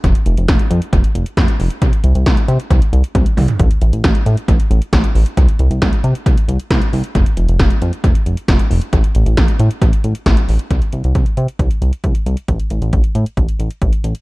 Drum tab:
HH |xxxxxxxxxxxxxxox|xxxxxxxxxxxxxxox|xxxxxxxxxxxxxxox|xxxxxxxxxxxxxxox|
SD |----o-------o---|----o-----------|----o-------o---|----o-------o---|
T1 |----------------|------------o---|----------------|----------------|
T2 |----------------|--------------o-|----------------|----------------|
FT |----------------|---------------o|----------------|----------------|
BD |o---o---o---o---|o---o---o---o---|o---o---o---o---|o---o---o---o---|

HH |xxxxxxxxxxxxxxox|xxxxxxxxxxxxxxox|xxxxxxxxxxxxxxxx|xxxxxxxxxxxxxxxx|
SD |----o-------o---|----o-------o---|----------------|----------------|
T1 |----------------|----------------|----------------|----------------|
T2 |----------------|----------------|----------------|----------------|
FT |----------------|----------------|----------------|----------------|
BD |o---o---o---o---|o---o---o---o---|o---o---o---o---|o---o---o---o---|